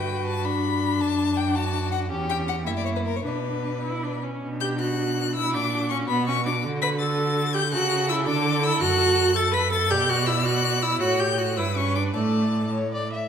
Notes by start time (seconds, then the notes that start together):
Already playing: G2 F#4 B4 G5
0.27 A5
0.45 D4 B5
1.00 F#2 D4 A5
1.37 G5
1.55 F#4 A5
1.91 F#5
2.10 E2 C#4 G4
2.29 G5
2.48 F#5
2.66 F#2 A#3 E4 E5
2.77 D5
2.85 C#5
2.96 B4
3.05 A#4
3.16 C#5
3.25 B2 D4 B4
3.84 E4
4.03 D4
4.23 C#4
4.43 B2 D4
4.60 G4 G6
4.79 F#4 F#6
5.35 E4 E6
5.54 A#2 D4 F#4 D6
5.90 C#4 C#6
6.08 B2 B3 B5
6.27 C#4 C#6
6.46 D4 D6
6.64 D3
6.82 B4 B6
7.00 A4 A6
7.54 G4 G6
7.72 C#3 F#4 A4 F#6
8.09 E4 E6
8.27 D3 D4 D6
8.63 E4 E6
8.81 F#2 F#4 F#6
9.36 A4 A6
9.53 B4 B6
9.72 A4 A6
9.91 B2 G4 D5 G6
10.09 F#4 F#6
10.26 E4 E6
10.45 F#4 F#6
10.82 E4 E6
11.00 A2 F#4 C#5 F#6
11.19 G4 G6
11.38 F#4 F#6
11.57 G2 E4 B4 E6
11.76 C#4 C#6
11.95 D4 D6
12.15 A2 A3 D5 A5
12.73 C#5
12.93 D5
13.12 E5